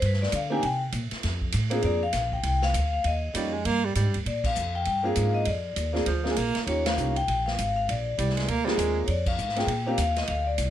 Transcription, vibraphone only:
0, 0, Header, 1, 2, 480
1, 0, Start_track
1, 0, Tempo, 301659
1, 1001, Time_signature, 4, 2, 24, 8
1, 17026, End_track
2, 0, Start_track
2, 0, Title_t, "Vibraphone"
2, 0, Program_c, 0, 11
2, 94, Note_on_c, 0, 71, 71
2, 351, Note_on_c, 0, 74, 90
2, 352, Note_off_c, 0, 71, 0
2, 524, Note_off_c, 0, 74, 0
2, 564, Note_on_c, 0, 77, 72
2, 827, Note_off_c, 0, 77, 0
2, 828, Note_on_c, 0, 80, 103
2, 1003, Note_off_c, 0, 80, 0
2, 1033, Note_on_c, 0, 79, 88
2, 1200, Note_off_c, 0, 79, 0
2, 2944, Note_on_c, 0, 74, 87
2, 3071, Note_off_c, 0, 74, 0
2, 3230, Note_on_c, 0, 77, 86
2, 3711, Note_on_c, 0, 79, 82
2, 3718, Note_off_c, 0, 77, 0
2, 3882, Note_off_c, 0, 79, 0
2, 3901, Note_on_c, 0, 79, 92
2, 4029, Note_off_c, 0, 79, 0
2, 4187, Note_on_c, 0, 77, 94
2, 4647, Note_off_c, 0, 77, 0
2, 4666, Note_on_c, 0, 77, 78
2, 4838, Note_off_c, 0, 77, 0
2, 4875, Note_on_c, 0, 75, 67
2, 5759, Note_off_c, 0, 75, 0
2, 6796, Note_on_c, 0, 74, 79
2, 6922, Note_off_c, 0, 74, 0
2, 7098, Note_on_c, 0, 77, 91
2, 7563, Note_on_c, 0, 79, 91
2, 7575, Note_off_c, 0, 77, 0
2, 7736, Note_off_c, 0, 79, 0
2, 7755, Note_on_c, 0, 79, 88
2, 7881, Note_off_c, 0, 79, 0
2, 8044, Note_on_c, 0, 77, 89
2, 8504, Note_on_c, 0, 75, 81
2, 8528, Note_off_c, 0, 77, 0
2, 8697, Note_off_c, 0, 75, 0
2, 8730, Note_on_c, 0, 74, 67
2, 9606, Note_off_c, 0, 74, 0
2, 10635, Note_on_c, 0, 73, 83
2, 10761, Note_off_c, 0, 73, 0
2, 10918, Note_on_c, 0, 77, 89
2, 11357, Note_off_c, 0, 77, 0
2, 11401, Note_on_c, 0, 79, 95
2, 11566, Note_off_c, 0, 79, 0
2, 11597, Note_on_c, 0, 79, 90
2, 11873, Note_on_c, 0, 77, 90
2, 11883, Note_off_c, 0, 79, 0
2, 12334, Note_off_c, 0, 77, 0
2, 12353, Note_on_c, 0, 77, 83
2, 12521, Note_off_c, 0, 77, 0
2, 12570, Note_on_c, 0, 74, 75
2, 13443, Note_off_c, 0, 74, 0
2, 14425, Note_on_c, 0, 73, 61
2, 14458, Note_off_c, 0, 73, 0
2, 14477, Note_on_c, 0, 74, 76
2, 14761, Note_off_c, 0, 74, 0
2, 14761, Note_on_c, 0, 77, 82
2, 15241, Note_off_c, 0, 77, 0
2, 15242, Note_on_c, 0, 79, 78
2, 15714, Note_on_c, 0, 77, 81
2, 15722, Note_off_c, 0, 79, 0
2, 15878, Note_off_c, 0, 77, 0
2, 15911, Note_on_c, 0, 77, 80
2, 16190, Note_on_c, 0, 75, 80
2, 16196, Note_off_c, 0, 77, 0
2, 16359, Note_on_c, 0, 77, 83
2, 16374, Note_off_c, 0, 75, 0
2, 16631, Note_off_c, 0, 77, 0
2, 16660, Note_on_c, 0, 74, 70
2, 17026, Note_off_c, 0, 74, 0
2, 17026, End_track
0, 0, End_of_file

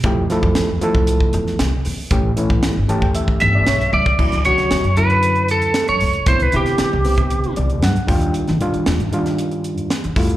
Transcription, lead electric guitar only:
0, 0, Header, 1, 2, 480
1, 0, Start_track
1, 0, Tempo, 519031
1, 45, Time_signature, 4, 2, 24, 8
1, 9588, End_track
2, 0, Start_track
2, 0, Title_t, "Lead electric guitar"
2, 0, Program_c, 0, 29
2, 3158, Note_on_c, 0, 76, 92
2, 3606, Note_off_c, 0, 76, 0
2, 3640, Note_on_c, 0, 74, 86
2, 4115, Note_off_c, 0, 74, 0
2, 4119, Note_on_c, 0, 73, 77
2, 4600, Note_on_c, 0, 71, 72
2, 4614, Note_off_c, 0, 73, 0
2, 5095, Note_off_c, 0, 71, 0
2, 5098, Note_on_c, 0, 69, 74
2, 5441, Note_off_c, 0, 69, 0
2, 5445, Note_on_c, 0, 73, 76
2, 5804, Note_off_c, 0, 73, 0
2, 5807, Note_on_c, 0, 72, 83
2, 5940, Note_off_c, 0, 72, 0
2, 5940, Note_on_c, 0, 71, 73
2, 6054, Note_off_c, 0, 71, 0
2, 6069, Note_on_c, 0, 67, 61
2, 6980, Note_off_c, 0, 67, 0
2, 9588, End_track
0, 0, End_of_file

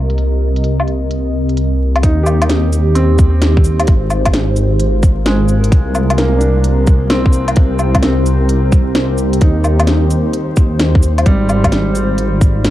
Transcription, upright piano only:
0, 0, Header, 1, 2, 480
1, 0, Start_track
1, 0, Key_signature, -3, "minor"
1, 0, Tempo, 461538
1, 190, Time_signature, 4, 2, 24, 8
1, 13209, End_track
2, 0, Start_track
2, 0, Title_t, "Upright piano"
2, 0, Program_c, 0, 0
2, 2118, Note_on_c, 0, 63, 62
2, 2287, Control_c, 0, 64, 127
2, 2322, Note_on_c, 0, 67, 54
2, 2862, Note_off_c, 0, 63, 0
2, 3010, Note_off_c, 0, 67, 0
2, 3069, Note_on_c, 0, 60, 72
2, 3818, Note_off_c, 0, 60, 0
2, 4046, Control_c, 0, 64, 0
2, 4193, Control_c, 0, 64, 127
2, 5468, Note_on_c, 0, 56, 60
2, 5966, Control_c, 0, 64, 0
2, 6142, Control_c, 0, 64, 127
2, 6147, Note_off_c, 0, 56, 0
2, 6425, Note_on_c, 0, 58, 77
2, 6636, Note_on_c, 0, 62, 57
2, 7176, Note_off_c, 0, 58, 0
2, 7327, Note_off_c, 0, 62, 0
2, 7383, Note_on_c, 0, 60, 75
2, 8135, Note_off_c, 0, 60, 0
2, 8350, Note_on_c, 0, 60, 56
2, 9098, Note_off_c, 0, 60, 0
2, 9796, Note_on_c, 0, 63, 59
2, 9802, Control_c, 0, 64, 0
2, 9972, Control_c, 0, 64, 127
2, 10541, Note_off_c, 0, 63, 0
2, 11712, Note_on_c, 0, 55, 78
2, 11724, Control_c, 0, 64, 0
2, 11925, Control_c, 0, 64, 127
2, 12459, Note_off_c, 0, 55, 0
2, 13209, End_track
0, 0, End_of_file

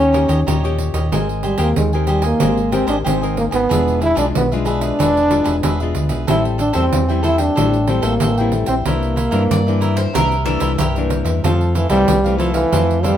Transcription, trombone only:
0, 0, Header, 1, 2, 480
1, 0, Start_track
1, 0, Tempo, 644468
1, 841, Time_signature, 4, 2, 24, 8
1, 9811, End_track
2, 0, Start_track
2, 0, Title_t, "Trombone"
2, 0, Program_c, 0, 57
2, 0, Note_on_c, 0, 61, 113
2, 572, Note_off_c, 0, 61, 0
2, 840, Note_on_c, 0, 56, 79
2, 949, Note_off_c, 0, 56, 0
2, 1081, Note_on_c, 0, 55, 81
2, 1189, Note_off_c, 0, 55, 0
2, 1193, Note_on_c, 0, 58, 84
2, 1309, Note_off_c, 0, 58, 0
2, 1326, Note_on_c, 0, 56, 82
2, 1433, Note_off_c, 0, 56, 0
2, 1560, Note_on_c, 0, 55, 82
2, 1673, Note_off_c, 0, 55, 0
2, 1679, Note_on_c, 0, 58, 99
2, 2015, Note_off_c, 0, 58, 0
2, 2044, Note_on_c, 0, 60, 96
2, 2151, Note_off_c, 0, 60, 0
2, 2156, Note_on_c, 0, 62, 87
2, 2211, Note_off_c, 0, 62, 0
2, 2289, Note_on_c, 0, 60, 90
2, 2509, Note_off_c, 0, 60, 0
2, 2520, Note_on_c, 0, 58, 87
2, 2574, Note_off_c, 0, 58, 0
2, 2634, Note_on_c, 0, 59, 100
2, 2973, Note_off_c, 0, 59, 0
2, 3004, Note_on_c, 0, 64, 107
2, 3115, Note_off_c, 0, 64, 0
2, 3118, Note_on_c, 0, 62, 90
2, 3173, Note_off_c, 0, 62, 0
2, 3257, Note_on_c, 0, 59, 88
2, 3362, Note_off_c, 0, 59, 0
2, 3490, Note_on_c, 0, 62, 109
2, 4417, Note_off_c, 0, 62, 0
2, 4688, Note_on_c, 0, 64, 93
2, 4795, Note_off_c, 0, 64, 0
2, 4917, Note_on_c, 0, 62, 96
2, 5026, Note_off_c, 0, 62, 0
2, 5031, Note_on_c, 0, 60, 98
2, 5371, Note_off_c, 0, 60, 0
2, 5399, Note_on_c, 0, 64, 100
2, 5508, Note_on_c, 0, 62, 103
2, 5519, Note_off_c, 0, 64, 0
2, 5880, Note_on_c, 0, 60, 90
2, 5891, Note_off_c, 0, 62, 0
2, 5999, Note_on_c, 0, 58, 94
2, 6010, Note_off_c, 0, 60, 0
2, 6357, Note_on_c, 0, 57, 80
2, 6368, Note_off_c, 0, 58, 0
2, 6468, Note_off_c, 0, 57, 0
2, 6472, Note_on_c, 0, 60, 90
2, 6528, Note_off_c, 0, 60, 0
2, 6598, Note_on_c, 0, 58, 88
2, 7531, Note_off_c, 0, 58, 0
2, 8517, Note_on_c, 0, 53, 103
2, 8757, Note_on_c, 0, 52, 102
2, 8769, Note_off_c, 0, 53, 0
2, 8859, Note_off_c, 0, 52, 0
2, 8864, Note_on_c, 0, 55, 114
2, 9207, Note_off_c, 0, 55, 0
2, 9224, Note_on_c, 0, 53, 97
2, 9336, Note_off_c, 0, 53, 0
2, 9341, Note_on_c, 0, 52, 105
2, 9716, Note_on_c, 0, 55, 116
2, 9727, Note_off_c, 0, 52, 0
2, 9811, Note_off_c, 0, 55, 0
2, 9811, End_track
0, 0, End_of_file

